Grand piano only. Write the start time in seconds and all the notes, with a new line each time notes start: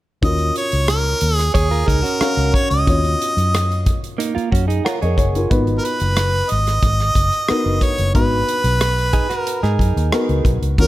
0.22 C#4 F4 F#4 A#4
2.21 C#4 F#4 A#4 F5
2.86 C#4 F4 F#4 C#5
4.85 C#5 F#5
5.03 A#4 D#5
5.17 G#4 C#5
5.35 F4 A#4
5.50 B3 D#4 F#4 B4
7.48 B3 D#4 F#4 A#4
8.14 B3 D#4 F#4 B4
10.12 B3 D#4 F#4 A#4
10.78 C#4 F4 F#4 A#4